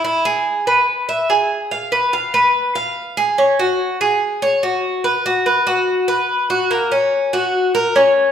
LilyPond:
\new Staff \with { instrumentName = "Cuban tres" } { \time 4/4 \key e \major \tempo 4 = 144 e'8 gis'4 b'4 e''8 gis'4 | eis''8 b'8 eis''8 b'4 eis''4 gis'8 | cis'8 fis'4 gis'4 cis''8 fis'4 | b'8 fis'8 b'8 fis'4 b'4 fis'8 |
ais8 cis'4 fis'4 ais'8 cis'4 | }